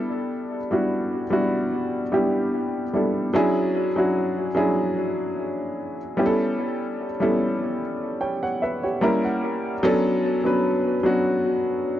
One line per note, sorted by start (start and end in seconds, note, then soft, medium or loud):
0.00 0.56 G3 medium
0.00 0.56 B3 medium
0.00 0.57 D4 medium
0.00 0.57 E4 medium
0.00 0.57 A4 loud
0.71 1.23 G3 medium
0.71 1.23 B3 medium
0.71 1.23 D4 medium
0.71 1.23 E4 medium
0.71 1.24 F#4 medium
1.30 2.01 G3 medium
1.30 2.02 B3 medium
1.30 2.02 D4 medium
1.30 2.02 E4 medium
1.30 2.02 F#4 medium
2.12 2.82 G3 medium
2.12 2.83 B3 medium
2.12 2.83 D4 medium
2.12 2.83 E4 medium
2.12 2.83 G4 medium
2.94 3.29 G3 medium
2.94 3.29 B3 medium
2.94 3.29 D4 medium
2.94 3.29 E4 medium
2.94 3.30 A4 medium
3.34 3.87 F#3 loud
3.34 3.87 C#4 medium
3.34 3.87 D4 loud
3.34 3.88 E4 loud
3.34 3.88 G#4 loud
3.96 4.47 F#3 medium
3.96 4.48 C#4 medium
3.96 4.48 D4 medium
3.96 4.48 E4 medium
3.96 4.49 F#4 medium
4.55 5.96 F#3 medium
4.55 5.96 C#4 medium
4.55 5.96 D4 medium
4.55 5.97 E4 medium
4.55 5.97 G#4 loud
6.17 7.05 G3 medium
6.17 7.05 B3 medium
6.17 7.06 C#4 medium
6.17 7.06 E4 medium
6.17 6.25 G4 medium
6.26 7.09 A4 loud
7.20 8.42 G3 medium
7.20 8.43 B3 medium
7.20 8.43 C#4 medium
7.20 8.43 E4 medium
7.20 7.81 A4 loud
8.21 8.41 C#5 medium
8.21 8.41 G5 medium
8.43 8.61 C#5 medium
8.43 8.60 F#5 medium
8.62 8.83 B4 medium
8.62 8.82 E5 medium
8.83 9.22 G4 medium
8.83 9.21 C#5 medium
9.01 9.72 G3 loud
9.01 9.72 A#3 medium
9.01 9.73 C#4 medium
9.01 9.73 E4 medium
9.01 9.73 A#4 loud
9.01 9.22 A#5 medium
9.25 9.79 F#5 medium
9.83 10.36 F#3 loud
9.83 10.36 B3 loud
9.83 10.36 C#4 loud
9.83 10.37 D4 loud
9.83 10.37 A4 loud
10.44 10.96 F#3 medium
10.44 10.96 B3 medium
10.44 10.96 C#4 medium
10.44 10.97 D4 medium
10.44 10.97 B4 medium
11.03 12.00 F#3 medium
11.03 12.00 B3 medium
11.03 12.00 C#4 medium
11.03 12.00 D4 medium
11.03 12.00 F#4 loud